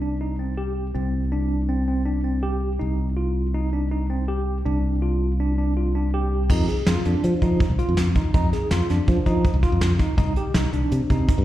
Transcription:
Already playing: C2
0.02 D4
0.21 D#4
0.39 C4
0.57 G4
0.94 C2 C4
1.32 D4
1.69 C4
1.88 C4
2.05 D4
2.24 C4
2.43 G4
2.79 C2 D#4
3.17 F4
3.54 D#4
3.73 D4
3.91 D#4
4.10 C4
4.28 G4
4.66 C2 D4
5.02 F4
5.40 D4
5.58 D4
5.77 F4
5.95 D4
6.14 G4
6.50 F2 D#4, kick, crash
6.68 G#4, closed hi-hat
6.86 F2 F4, snare, closed hi-hat
7.05 F2 D4, closed hi-hat
7.24 F3, closed hi-hat
7.42 F3 D#4, kick, closed hi-hat
7.60 kick, closed hi-hat
7.70 C2
7.79 F4, closed hi-hat
7.89 F2
7.97 F2, snare, closed hi-hat
8.15 D#4, kick, closed hi-hat
8.34 F2 D#4, kick, closed hi-hat
8.53 G#4, snare, closed hi-hat
8.71 F2 F4, snare, closed hi-hat
8.90 F2 D4, snare, closed hi-hat
9.08 F3, kick, closed hi-hat
9.26 F3 D#4, kick, closed hi-hat
9.44 kick, closed hi-hat
9.54 C2
9.63 F4, kick, snare, closed hi-hat
9.72 F2
9.81 F2, snare, closed hi-hat
9.99 D#4, kick, snare, closed hi-hat
10.18 C2 D#4, kick, closed hi-hat
10.36 G4, closed hi-hat
10.54 C2 D#4, snare, closed hi-hat
10.73 C2 D4, closed hi-hat
10.92 C3, closed hi-hat
11.10 C3 D#4, kick, closed hi-hat
11.28 kick, closed hi-hat
11.38 G2

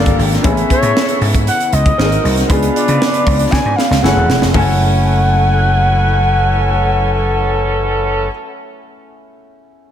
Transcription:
Already playing: G1 F3 A#3 D4 F4 G4 A4 D5 F5
0.00 A#3
0.06 kick, closed hi-hat
0.19 G#1, open hi-hat
0.32 snare, closed hi-hat
0.42 A1 C#3 E3 B3 C#4 E4 G#4 A4 E5, kick, closed hi-hat
0.57 closed hi-hat
0.70 C#5, kick, closed hi-hat
0.83 A2, closed hi-hat
0.97 snare
1.09 closed hi-hat
1.21 G#2, open hi-hat
1.35 kick, closed hi-hat
1.47 F#5, closed hi-hat
1.60 closed hi-hat
1.73 C#2 D#5, closed hi-hat
1.86 kick, closed hi-hat
1.98 G#1 C3 A#3 C4 D#4 F#4 G#4 A#4 D#5, snare
2.06 A#4
2.12 closed hi-hat
2.25 C2, open hi-hat
2.38 snare, closed hi-hat
2.49 C#2 C#3 F3 G#3 B3 D4 F4 G#4 B4, kick, closed hi-hat
2.63 closed hi-hat
2.75 D5, closed hi-hat
2.88 C#3, closed hi-hat
3.02 snare
3.14 closed hi-hat
3.27 C#2, kick, open hi-hat
3.39 closed hi-hat
3.51 C#3 G#5, kick, snare
3.65 G#2
3.76 F5, snare
3.91 C#2, snare
4.02 F#1 E3 G#3 A3 C#4 E4 F#4 G#4 A4 F#5, snare
4.09 A3
4.16 D#1
4.29 E1, snare
4.41 F1, snare
4.53 F#1 E3 F#3 A3 C#4 E4 A4 F#5 G#5, kick, floor tom, open hi-hat
4.57 G#5

